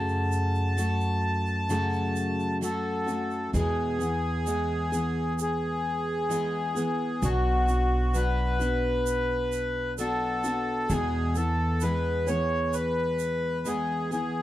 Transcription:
Already playing: F#2 C#3 F#3 A3 C#4 F#4 A5
0.09 shaker
0.32 shaker
0.55 shaker
0.76 F#3 A3 C#4 F#4, shaker
1.01 shaker
1.47 shaker
1.69 F#2 C#3 F#3 A3 C#4 F#4, shaker
1.93 shaker
2.16 shaker
2.40 shaker
2.61 F#3 A3 C#4 F#4 A4, shaker
3.06 F#3 A3 C#4 F#4, shaker
3.31 shaker
3.53 E2 B2 E3 G#3 B3 G#4, shaker
3.99 E3 G#3 B3 G#4, shaker
4.46 E3 G#3 B3 G#4, shaker
4.92 E3 G#3 B3 G#4, shaker
5.39 G#4, shaker
6.29 E3 G#3 B3 G#4, shaker
6.75 E3 G#3 B3 G#4, shaker
7.22 B1 B2 F#3 B3 D4 F#4, shaker
7.68 B3 D4 F#4, shaker
8.14 F#3 B3 D4 F#4 B4, shaker
8.59 B3 D4 F#4, shaker
9.06 shaker
9.52 shaker
9.98 F#3 B3 D4 F#4 A4, shaker
10.44 B3 D4 F#4, shaker
10.89 E2 B2 E3 G#3 B3 G#4, shaker
11.35 E3 B3 A4, shaker
11.80 E3 G#3 B3 B4, shaker
11.85 G#4
12.27 E3 G#3 B3 G#4 C#5, shaker
12.73 B4, shaker
13.19 shaker
13.65 E3 G#3 B3 G#4, shaker
14.11 E3 G#3 B3 G#4, shaker

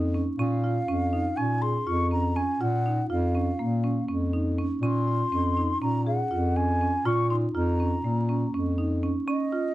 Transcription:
Already playing: F2
0.15 C#4
0.38 A#2 C#4 F5
0.64 F4
0.87 F2 C#4
1.13 D#4
1.37 A#2 C#4 G#5
1.62 G#4 C6
1.86 F2 F4 C#6
2.11 C#4 A#5
2.36 C#4 G#5
2.61 A#2 F4 F#5
2.86 D#4
3.10 F2 F4 F5
3.35 C#4
3.58 A#2 A#3
3.84 C#4
4.08 F2 C#4
4.33 D#4
4.58 C#4
4.82 A#2 C#4 C6
5.08 F4
5.32 F2 C#4
5.57 D#4
5.81 A#2 C#4 A#5
6.06 G#4 F#5
6.31 F2 F4
6.56 C#4 G#5
6.81 C#4
7.05 A#2 F4 C#6
7.30 D#4 C6
7.55 F2 F4 A#5
7.80 C#4
8.03 A#2 A#3
8.29 C#4
8.52 F2 C#4
8.78 D#4
9.03 C#4
9.27 C#4 D#5
9.52 F4

